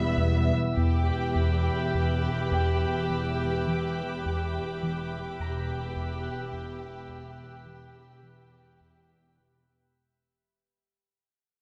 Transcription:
0.00 0.52 E1 soft
0.00 0.52 E2 soft
0.00 0.52 G3 soft
0.00 0.52 B3 soft
0.00 0.73 B3 soft
0.00 0.73 E4 soft
0.00 0.53 E5 soft
0.00 0.73 E5 soft
0.00 0.14 B5 soft
0.17 0.53 E2 soft
0.76 5.35 E1 soft
0.76 1.12 E2 medium
0.76 5.35 E2 soft
0.76 5.35 G4 soft
0.76 5.35 B4 soft
0.76 5.35 E5 soft
0.76 9.35 G5 soft
0.76 8.18 B5 soft
0.76 7.05 D6 soft
1.35 1.70 E2 soft
1.95 2.29 E2 soft
2.52 2.86 E2 medium
2.52 6.44 G5 soft
3.10 3.44 E3 soft
3.68 4.02 E3 soft
4.26 4.60 E2 medium
4.83 5.17 E3 medium
5.38 9.73 E1 soft
5.38 9.74 E2 soft
5.38 5.73 E2 medium
5.38 9.93 G4 soft
5.38 9.74 G4 soft
5.38 9.94 B4 soft
5.38 9.94 E5 soft
5.38 9.31 A#5 soft
5.96 6.30 E2 soft
6.53 6.86 E2 soft
7.09 7.43 E2 medium
7.66 8.00 E3 soft
8.23 8.57 E3 soft
8.81 9.16 E2 medium
9.40 9.75 E3 soft

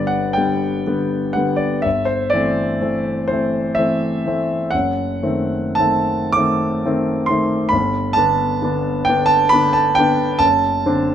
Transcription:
0.00 1.85 G1 soft
0.00 0.37 D3 soft
0.00 0.37 G3 soft
0.00 0.38 B3 soft
0.00 1.87 B4 medium
0.00 1.56 D5 medium
0.07 0.35 F#5 medium
0.33 0.83 D3 soft
0.33 0.83 G3 soft
0.33 1.35 G5 medium
0.38 0.83 B3 soft
0.87 1.33 D3 soft
0.87 1.33 G3 soft
0.87 1.33 B3 soft
1.33 1.81 D3 soft
1.33 1.81 G3 soft
1.33 1.82 B3 soft
1.33 1.59 F#5 medium
1.56 1.83 D5 medium
1.82 2.32 G1 soft
1.82 2.08 E5 medium
2.05 2.31 C5 medium
2.30 2.77 E3 soft
2.30 2.77 A3 soft
2.30 3.28 D5 medium
2.34 2.78 C4 soft
2.81 3.26 E3 soft
2.81 3.26 A3 soft
2.81 3.26 C4 soft
3.28 3.75 E3 soft
3.28 3.75 A3 soft
3.28 3.75 C4 soft
3.28 3.77 C5 medium
3.75 4.22 E3 soft
3.75 4.22 A3 soft
3.75 4.71 E5 medium
3.79 4.22 C4 soft
4.26 4.69 E3 soft
4.26 4.69 A3 soft
4.26 4.70 C4 soft
4.71 5.23 F#1 soft
4.71 5.79 F#5 medium
5.23 5.76 D#3 soft
5.23 5.76 A3 soft
5.23 5.77 C4 soft
5.75 6.32 D#3 soft
5.75 6.34 A5 medium
5.79 6.32 A3 soft
5.79 6.32 C4 soft
6.32 6.82 A3 soft
6.32 7.28 D6 loud
6.37 6.82 D#3 soft
6.37 6.82 C4 soft
6.85 7.26 D#3 soft
6.85 7.26 A3 soft
6.85 7.26 C4 medium
7.26 7.69 D#3 soft
7.26 7.72 C6 medium
7.30 7.70 A3 soft
7.30 7.70 C4 soft
7.69 8.17 G1 medium
7.69 8.16 B5 medium
8.13 8.59 D3 soft
8.13 8.59 B3 soft
8.13 9.07 A5 medium
8.18 8.60 D4 soft
8.62 9.04 D3 soft
8.62 9.05 B3 soft
8.62 9.05 D4 soft
9.05 9.50 D3 soft
9.05 9.29 G5 medium
9.09 9.50 B3 medium
9.09 9.50 D4 medium
9.26 9.51 A5 loud
9.49 9.94 D3 medium
9.49 9.94 B3 medium
9.49 9.74 B5 loud
9.54 9.94 D4 medium
9.73 9.97 A5 medium
9.95 10.38 D3 soft
9.95 10.41 G5 medium
9.99 10.39 B3 medium
9.99 10.39 D4 medium
10.39 10.83 F#1 medium
10.39 11.15 A5 loud
10.86 11.15 D3 soft
10.86 11.15 C4 medium
10.86 11.15 D4 medium

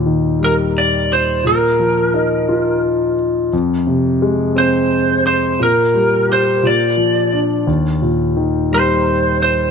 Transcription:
0.00 1.41 D#2 soft
0.00 1.06 A#2 soft
0.06 1.41 D#3 soft
0.40 1.41 G3 soft
0.44 0.53 A#4 medium
0.78 1.13 D5 medium
1.13 1.47 C5 medium
1.44 3.48 A#2 soft
1.44 2.80 A#4 medium
1.80 3.14 F3 soft
2.14 3.49 D#4 soft
2.49 3.49 F4 soft
3.53 5.56 F2 soft
3.87 5.21 C3 soft
4.22 5.56 G#3 soft
4.56 5.57 C4 soft
4.56 5.22 C5 medium
5.27 5.62 C5 medium
5.60 6.61 A#2 soft
5.60 6.32 A#4 medium
5.94 6.61 G3 soft
6.29 6.63 G4 soft
6.29 6.67 C5 medium
6.63 7.64 A#2 soft
6.63 7.39 D5 medium
6.97 7.65 F3 soft
7.33 7.66 D4 soft
7.67 9.71 D#2 soft
8.02 9.37 A#2 soft
8.37 9.71 D#3 soft
8.72 9.71 G3 soft
8.72 9.41 C5 medium
9.43 9.71 C5 medium

